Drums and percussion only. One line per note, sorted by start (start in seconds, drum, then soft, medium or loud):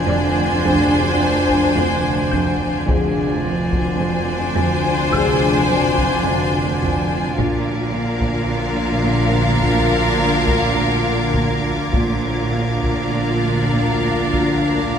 0.65 taiko medium
1.49 taiko medium
2.33 taiko medium
2.88 taiko medium
3.73 taiko medium
5.13 taiko medium
5.98 taiko medium
6.82 taiko medium
7.39 taiko medium
8.22 taiko medium
9.62 taiko medium
10.48 taiko medium
11.34 taiko medium
11.93 taiko medium
12.83 taiko medium
14.33 taiko medium